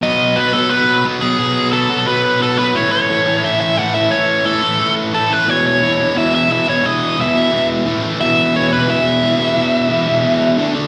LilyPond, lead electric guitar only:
\new Staff \with { instrumentName = "Lead electric guitar" } { \time 4/4 \key b \mixolydian \tempo 4 = 176 dis''4 b'8 a'8 b'4 r8 gis'8~ | gis'4 a'4 b'4 a'8 b'8 | cis''8 cis''4. e''8 e''8 fis''8 e''8 | cis''4 a'4. r8 a'8 b'8 |
cis''8 cis''4. e''8 e''8 e''8 cis''8 | dis''4 e''4. r4. | e''4 cis''8 b'8 e''2~ | e''2. r4 | }